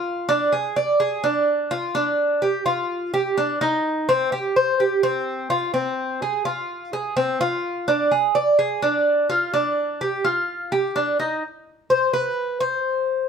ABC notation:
X:1
M:4/4
L:1/8
Q:1/4=127
K:Gphr
V:1 name="Cuban tres"
F D A d A D2 F | D2 G F2 G D E- | E C G c G C2 F | C2 A F2 A C F- |
F D A d A D2 F | D2 G F2 G D E | z2 c =B2 c3 |]